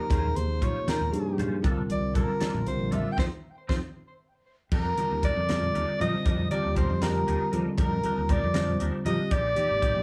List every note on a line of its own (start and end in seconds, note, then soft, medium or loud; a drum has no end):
0.00 0.38 A#4 medium
0.10 0.34 D#2 medium
0.10 0.59 C3 medium
0.10 0.59 F3 medium
0.10 0.27 G#3 medium
0.10 0.59 A#3 medium
0.10 0.27 C#4 medium
0.10 0.59 D#4 medium
0.10 0.27 F4 medium
0.10 0.59 G#4 medium
0.10 0.27 C5 medium
0.10 kick medium
0.10 closed hi-hat medium
0.10 muted conga medium
0.23 low conga medium
0.35 0.60 D#2 medium
0.35 0.65 C5 medium
0.35 closed hi-hat medium
0.35 high conga medium
0.61 1.10 C3 medium
0.61 1.10 F3 medium
0.61 0.77 G#3 medium
0.61 1.10 A#3 medium
0.61 0.78 C#4 medium
0.61 1.10 D#4 medium
0.61 1.10 F4 medium
0.61 0.78 F4 medium
0.61 0.78 C5 medium
0.61 0.89 C#5 medium
0.61 kick medium
0.61 closed hi-hat medium
0.61 low conga medium
0.88 0.99 D#3 medium
0.88 1.04 G#3 soft
0.88 1.04 C#4 medium
0.88 1.03 F4 medium
0.88 1.42 A#4 medium
0.88 1.03 C5 medium
0.88 snare medium
0.88 closed hi-hat medium
0.88 muted conga medium
0.88 high conga medium
1.00 1.12 D#2 medium
1.00 low conga medium
1.11 1.60 G2 medium
1.11 1.61 C3 medium
1.11 1.60 F3 medium
1.11 1.61 A#3 medium
1.11 1.61 D#4 medium
1.11 1.61 G#4 medium
1.11 closed hi-hat medium
1.38 1.55 C#4 soft
1.38 1.55 F4 soft
1.38 1.55 C5 soft
1.38 closed hi-hat medium
1.38 high conga medium
1.38 low conga medium
1.62 1.76 C2 medium
1.62 2.12 D3 medium
1.62 2.12 G3 medium
1.62 1.80 A#3 medium
1.62 2.12 C4 medium
1.62 1.80 D4 medium
1.62 2.12 F4 medium
1.62 1.81 F4 medium
1.62 1.81 A4 medium
1.62 2.12 A#4 medium
1.62 kick medium
1.62 closed hi-hat medium
1.62 muted conga medium
1.78 low conga medium
1.89 2.13 C2 medium
1.89 2.15 D5 medium
1.89 closed hi-hat medium
1.89 high conga medium
2.14 2.63 D3 medium
2.14 2.63 G3 medium
2.14 2.31 A#3 medium
2.14 2.63 C4 medium
2.14 2.31 D4 medium
2.14 2.63 F4 medium
2.14 2.31 F4 medium
2.14 2.31 A4 medium
2.14 2.63 A#4 medium
2.14 2.64 A#4 medium
2.14 kick medium
2.14 closed hi-hat medium
2.14 low conga medium
2.40 2.57 A#3 soft
2.40 2.57 D4 soft
2.40 2.57 F4 medium
2.40 2.56 A4 medium
2.40 muted fingered electric bass stroke soft
2.40 snare medium
2.40 closed hi-hat medium
2.40 muted conga medium
2.40 high conga medium
2.54 2.66 A#1 medium
2.54 low conga medium
2.66 2.78 C2 medium
2.66 3.15 D3 medium
2.66 3.15 G3 medium
2.66 3.15 C4 medium
2.66 3.15 F4 medium
2.66 3.15 A#4 medium
2.66 2.95 C5 medium
2.66 closed hi-hat soft
2.79 3.03 A#1 medium
2.91 3.08 D4 soft
2.91 3.08 F4 soft
2.91 3.08 A4 soft
2.91 3.14 E5 medium
2.91 closed hi-hat medium
2.91 high conga medium
2.91 low conga medium
3.12 3.19 G5 medium
3.17 3.28 F2 medium
3.17 3.26 C4 medium
3.17 3.27 C4 medium
3.17 3.26 D#4 medium
3.17 3.27 D#4 medium
3.17 3.26 F4 medium
3.17 3.27 F4 medium
3.17 3.25 C5 medium
3.17 kick medium
3.17 snare medium
3.17 high conga medium
3.68 3.79 F2 medium
3.68 3.77 C4 medium
3.68 3.78 C4 medium
3.68 3.77 D#4 medium
3.68 3.78 D#4 medium
3.68 3.77 F4 medium
3.68 3.78 F4 medium
3.68 3.76 C5 medium
3.68 kick medium
3.68 snare medium
3.68 high conga medium
4.71 4.95 F2 medium
4.71 4.87 G3 medium
4.71 4.88 D4 medium
4.71 4.88 D#4 medium
4.71 4.88 A#4 medium
4.71 5.21 A#4 medium
4.71 5.20 A#5 medium
4.71 kick loud
4.71 crash medium
4.71 muted conga medium
4.85 low conga medium
4.98 5.46 D3 medium
4.98 5.46 G3 medium
4.98 5.46 C4 medium
4.98 5.14 D4 soft
4.98 5.14 D#4 soft
4.98 5.46 F4 medium
4.98 5.45 A#4 medium
4.98 5.13 A#4 soft
4.98 muted fingered electric bass stroke soft
4.98 closed hi-hat medium
4.98 high conga medium
5.11 5.34 D#2 medium
5.23 5.39 G3 medium
5.23 5.39 D4 medium
5.23 5.39 D#4 medium
5.23 5.39 A#4 medium
5.23 5.97 D5 medium
5.23 5.98 D6 medium
5.23 kick medium
5.23 closed hi-hat medium
5.23 low conga medium
5.36 5.72 F2 medium
5.48 5.96 D3 medium
5.48 5.96 G3 medium
5.48 5.65 G3 medium
5.48 5.96 C4 medium
5.48 5.65 D4 medium
5.48 5.65 D#4 medium
5.48 5.97 F4 medium
5.48 5.97 A4 medium
5.48 5.64 A#4 medium
5.48 snare loud
5.48 closed hi-hat medium
5.48 muted conga medium
5.48 high conga medium
5.62 low conga medium
5.74 5.87 D#2 medium
5.74 5.90 G3 soft
5.74 5.90 D4 medium
5.74 5.90 D#4 medium
5.74 5.90 A#4 medium
5.74 closed hi-hat medium
5.88 muted fingered electric bass stroke soft
5.99 6.48 D3 medium
5.99 6.12 F3 medium
5.99 6.47 G3 medium
5.99 6.47 C4 medium
5.99 6.16 D4 soft
5.99 6.16 D#4 soft
5.99 6.48 F4 medium
5.99 6.15 A#4 medium
5.99 6.48 C5 medium
5.99 6.48 D#5 loud
5.99 6.49 D#6 medium
5.99 closed hi-hat medium
5.99 high conga medium
5.99 low conga medium
6.14 muted fingered electric bass stroke soft
6.25 6.49 F2 medium
6.25 6.41 G3 medium
6.25 6.41 D4 medium
6.25 6.41 D#4 medium
6.25 6.41 A#4 medium
6.25 kick loud
6.25 closed hi-hat medium
6.25 muted conga medium
6.39 low conga medium
6.51 6.99 D3 medium
6.51 6.99 G3 medium
6.51 6.99 C4 medium
6.51 6.67 D4 soft
6.51 6.67 D#4 soft
6.51 6.99 F4 medium
6.51 6.99 G4 medium
6.51 6.66 A#4 soft
6.51 6.75 D5 medium
6.51 6.75 D6 medium
6.51 closed hi-hat soft
6.51 high conga medium
6.65 6.88 D#2 medium
6.75 6.91 G3 medium
6.75 6.92 D4 medium
6.75 6.92 D#4 medium
6.75 6.92 A#4 medium
6.75 7.04 C5 medium
6.75 7.04 C6 medium
6.75 kick medium
6.75 closed hi-hat medium
6.75 low conga medium
6.90 7.25 F2 medium
7.01 7.50 D3 medium
7.01 7.50 G3 medium
7.01 7.18 G3 soft
7.01 7.49 C4 medium
7.01 7.18 D4 medium
7.01 7.18 D#4 medium
7.01 7.50 F4 medium
7.01 7.50 G4 medium
7.01 7.17 A#4 medium
7.01 7.60 A#4 medium
7.01 7.60 A#5 medium
7.01 snare medium
7.01 closed hi-hat medium
7.01 muted conga medium
7.01 high conga medium
7.27 7.39 D#2 medium
7.27 7.43 G3 medium
7.27 7.43 D4 medium
7.27 7.43 D#4 medium
7.27 7.43 A#4 medium
7.27 closed hi-hat medium
7.52 8.01 D3 medium
7.52 7.65 F3 medium
7.52 8.01 G3 medium
7.52 8.01 C4 medium
7.52 7.69 D4 soft
7.52 7.68 D#4 soft
7.52 8.01 F4 medium
7.52 8.01 A4 medium
7.52 7.68 A#4 soft
7.52 closed hi-hat medium
7.52 high conga medium
7.66 muted fingered electric bass stroke soft
7.78 8.02 F2 medium
7.78 7.94 G3 medium
7.78 7.94 D4 medium
7.78 7.94 D#4 medium
7.78 7.94 A#4 medium
7.78 8.32 A#4 medium
7.78 8.34 A#5 medium
7.78 kick loud
7.78 closed hi-hat medium
7.78 muted conga medium
7.91 low conga medium
8.04 8.52 D3 medium
8.04 8.52 G3 medium
8.04 8.52 C4 medium
8.04 8.20 D4 soft
8.04 8.20 D#4 soft
8.04 8.52 F4 medium
8.04 8.20 A#4 medium
8.04 8.52 A#4 medium
8.04 muted fingered electric bass stroke soft
8.04 closed hi-hat medium
8.04 high conga medium
8.18 8.41 D#2 medium
8.29 8.45 G3 medium
8.29 8.45 D4 medium
8.29 8.45 D#4 medium
8.29 8.45 A#4 medium
8.29 8.80 D5 medium
8.29 8.81 D6 medium
8.29 kick medium
8.29 closed hi-hat medium
8.29 low conga medium
8.44 8.78 F2 medium
8.54 9.03 D3 medium
8.54 8.70 G3 medium
8.54 9.03 G3 medium
8.54 9.03 C4 medium
8.54 8.70 D4 medium
8.54 8.70 D#4 medium
8.54 9.03 F4 medium
8.54 8.70 A#4 medium
8.54 9.03 C5 medium
8.54 snare loud
8.54 closed hi-hat medium
8.54 muted conga medium
8.54 high conga medium
8.67 low conga medium
8.79 8.93 D#2 medium
8.79 8.95 G3 medium
8.79 8.96 D4 medium
8.79 8.96 D#4 medium
8.79 8.96 A#4 medium
8.79 closed hi-hat medium
8.94 muted fingered electric bass stroke soft
9.05 9.32 D3 medium
9.05 9.18 F3 medium
9.05 9.31 G3 medium
9.05 9.32 C4 medium
9.05 9.22 D4 soft
9.05 9.21 D#4 soft
9.05 9.32 F4 medium
9.05 9.32 G4 medium
9.05 9.21 A#4 soft
9.05 9.34 D#5 medium
9.05 9.33 D#6 medium
9.05 closed hi-hat medium
9.05 high conga medium
9.05 low conga medium
9.19 muted fingered electric bass stroke soft
9.31 9.55 A#1 medium
9.31 9.47 G#3 medium
9.31 9.47 C4 medium
9.31 9.47 D#4 medium
9.31 9.47 G4 medium
9.31 10.03 D5 loud
9.31 10.03 D6 medium
9.31 kick loud
9.31 closed hi-hat medium
9.31 muted conga medium
9.55 10.03 C3 medium
9.55 10.03 F3 medium
9.55 10.03 A#3 medium
9.55 9.73 C4 soft
9.55 10.03 D#4 medium
9.55 9.72 D#4 soft
9.55 10.03 G4 medium
9.55 9.72 G4 medium
9.55 closed hi-hat medium
9.55 high conga medium
9.71 9.94 G#1 medium
9.81 9.97 G#3 medium
9.81 9.97 C4 medium
9.81 9.98 D#4 medium
9.81 9.98 G4 medium
9.81 kick medium
9.81 closed hi-hat medium
9.81 low conga medium
9.95 10.03 A#1 medium